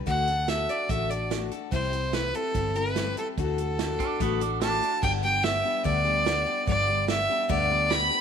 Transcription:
0.06 D2 D3 A3 D4 F#4 A4 F#5, kick, closed hi-hat
0.27 D4 F#4 A4, closed hi-hat
0.47 A3 D4 F#4 A4 E5, snare, closed hi-hat
0.69 D4 F#4 A4 D5, closed hi-hat
0.89 A1 D3 A3 D4 F#4 A4 E5, kick, closed hi-hat
1.09 D4 F#4 A4 D5, closed hi-hat
1.30 A3 D4 F#4 A4, snare, closed hi-hat
1.51 D4 F#4 A4, closed hi-hat
1.72 C2 C3 G3 C4 E4 G4 C5, kick, closed hi-hat
1.92 C4 E4 G4, closed hi-hat
2.13 G3 C4 E4 G4 B4, snare, closed hi-hat
2.34 C4 E4 G4 A4, closed hi-hat
2.54 G1 C3 G3 C4 E4 G4, kick, closed hi-hat
2.75 C4 E4 G4 B4, closed hi-hat
2.96 G3 C4 E4 G4, snare, closed hi-hat
3.17 C4 E4 G4 A4, closed hi-hat
3.38 D2 D3 A3 D4 F#4 A4, kick, closed hi-hat
3.58 D4 F#4 A4, closed hi-hat
3.79 A3 D4 F#4 A4, snare, closed hi-hat
4.00 D4 F#4 A4, kick, closed hi-hat
4.20 A1 D3 A3 B3 D4 F#4 A4, kick, closed hi-hat
4.40 D4 F#4 A4, closed hi-hat
4.61 A3 D4 F#4 A4 A5, snare, closed hi-hat
4.82 D4 F#4 A4, closed hi-hat
5.03 G1 G2 D3 G3 B3 D4 G4 G5, kick, crash
5.23 G3 B3 D4 G4 G5
5.43 G3 B3 D4 G4 E5, snare, open hi-hat
5.64 G3 B3 D4 G4
5.84 D2 G2 D3 G3 B3 D4 G4 D5, kick, open hi-hat
6.04 G3 B3 D4 G4
6.25 G3 B3 D4 G4, snare, open hi-hat
6.46 G3 B3 D4 G4
6.67 G1 G2 D3 G3 B3 D4 G4 D5, kick, open hi-hat
6.88 G3 B3 D4 G4
7.08 G3 B3 D4 G4 E5, snare, open hi-hat
7.29 G3 B3 D4 G4
7.49 D2 G2 D3 G3 B3 D4 G4 D5, kick, open hi-hat
7.69 G3 B3 D4 G4
7.90 G3 B3 D4 G4 B5, snare, open hi-hat
8.11 G3 B3 D4 G4

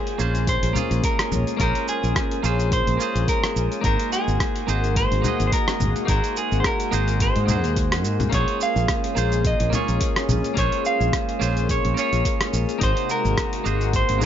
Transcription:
Already playing: G#3 A#3 C#4 F4 G#4 A#4 C5 D#5 F#5
0.07 C5, closed hi-hat
0.18 A#1 A#3 C#4 F4 G#4 C5, cabasa
0.35 closed hi-hat, cabasa
0.47 A#4 C5, kick, closed hi-hat, cabasa
0.63 A#1 G#4, closed hi-hat
0.73 A#3 C#4 F4, low conga, cabasa
0.78 G#4
0.91 A#1 C5, closed hi-hat, cabasa
1.03 A#4 C5, kick, closed hi-hat, cabasa
1.19 cross-stick, closed hi-hat, cabasa
1.32 A#1 A#4, low conga, cabasa
1.47 closed hi-hat, cabasa
1.57 A#1 A#3 C#4 F4 A#4, kick, closed hi-hat, cabasa
1.61 G#4 C5
1.75 C5, closed hi-hat
1.88 G#4 C5, cabasa
2.04 A#1, cabasa
2.16 A#4, kick, cross-stick, closed hi-hat, cabasa
2.31 G#4, closed hi-hat
2.43 A#1 A#3 C#4 F4 G#4 C5, cabasa
2.60 C5, closed hi-hat, cabasa
2.72 C5, kick, closed hi-hat, cabasa
2.87 A#1, closed hi-hat
2.97 A#3 C#4 F4 A#4, cabasa
3.02 G#4 C5
3.15 A#1 G#4, closed hi-hat, cabasa
3.28 A#4, kick, closed hi-hat, cabasa
3.44 C5, cross-stick, closed hi-hat, cabasa
3.56 A#1 C5, cabasa
3.72 closed hi-hat, cabasa
3.81 G#1 A#3 D#4 F#4 A#4, kick, closed hi-hat, cabasa
3.86 G#4 C5
4.00 closed hi-hat
4.12 G#4, cabasa
4.27 G#1 C5, cabasa
4.40 C5, kick, cross-stick, closed hi-hat, cabasa
4.56 closed hi-hat
4.67 G#1 A#3 D#4 F#4 G#4 A#4 C5, cabasa
4.84 G#4, closed hi-hat, cabasa
4.96 C5, kick, closed hi-hat, cabasa
5.12 G#1, closed hi-hat
5.22 A#3 D#4 F#4 C5, low conga, cabasa
5.26 G#4 D#5
5.40 G#1, closed hi-hat, cabasa
5.47 C5
5.52 A#4, kick, closed hi-hat, cabasa
5.67 G#4, cross-stick, closed hi-hat, cabasa
5.80 G#1, low conga, cabasa
5.96 C5, closed hi-hat, cabasa
6.05 G#1 A#3 D#4 F#4 A#4 C5, kick, closed hi-hat, cabasa
6.10 G#4 C5
6.24 closed hi-hat, cabasa
6.36 G#4 A#4, cabasa
6.52 G#1 G#4, cabasa
6.60 C5
6.64 A#4, kick, cross-stick, closed hi-hat, cabasa
6.80 C5, closed hi-hat, cabasa
6.91 G#1 A#3 D#4 F#4 G#4 C5, cabasa
7.08 closed hi-hat, cabasa
7.20 A#4 C5, kick, closed hi-hat, cabasa
7.36 G#2, closed hi-hat
7.46 A#3 D#4 F#4, low conga, cabasa
7.50 G#4 C5
7.64 D#2 C5, closed hi-hat, cabasa
7.76 D#5, kick, closed hi-hat, cabasa
7.92 F#5, cross-stick, closed hi-hat, cabasa
8.05 G#2 C5, cabasa
8.20 C5, closed hi-hat, low conga, cabasa
8.30 A#1 A#3 C#4 F4, kick, closed hi-hat, cabasa
8.34 G#4 C5 C#5
8.48 C5, closed hi-hat
8.61 C5 F5, cabasa
8.76 A#1, cabasa
8.88 A#4, kick, cross-stick, closed hi-hat, cabasa
9.04 G#4, closed hi-hat
9.15 A#1 A#3 C#4 F4 G#4 C5, cabasa
9.32 C5, closed hi-hat, cabasa
9.45 C5 D#5, kick, closed hi-hat, cabasa
9.60 A#1, closed hi-hat
9.70 A#3 C#4 F4, low conga, cabasa
9.74 G#4 C#5
9.88 A#1 G#4, closed hi-hat, cabasa
10.01 kick, closed hi-hat, cabasa
10.16 C5, cross-stick, closed hi-hat, cabasa
10.29 A#1 C5, low conga, cabasa
10.44 closed hi-hat, cabasa
10.54 A#1 A#3 C#4 F4 A#4, kick, closed hi-hat, cabasa
10.58 G#4 C5 C#5
10.72 G#4, closed hi-hat
10.85 F5, cabasa
11.00 A#1 C5, cabasa
11.13 C5, kick, cross-stick, closed hi-hat, cabasa
11.29 closed hi-hat
11.40 A#1 A#3 C#4 F4 G#4 A#4 C5, cabasa
11.57 G#4, closed hi-hat, cabasa
11.69 C#5, kick, closed hi-hat, cabasa
11.85 A#1 C5, closed hi-hat
11.94 A#3 C#4 F4 C5, cabasa
11.99 G#4 C#5
12.13 A#1, closed hi-hat, cabasa
12.25 A#4, kick, closed hi-hat, cabasa
12.41 G#4, cross-stick, closed hi-hat, cabasa
12.53 A#1, cabasa
12.69 C5, closed hi-hat, cabasa
12.78 G#1 C3 G#3 A#3 D#4 F#4 C5, kick, closed hi-hat, cabasa
12.83 G#4 C5
12.97 closed hi-hat
13.09 A#4, cabasa
13.25 G#1 G#4, cabasa
13.37 kick, cross-stick, closed hi-hat, cabasa
13.53 C5, closed hi-hat
13.64 G#1 A#3 D#4 F#4 G#4 C5, cabasa
13.81 closed hi-hat, cabasa
13.93 A#4 C5, kick, closed hi-hat, cabasa
14.09 G#1 G#4, closed hi-hat
14.18 A#3 D#4 F#4, low conga, cabasa

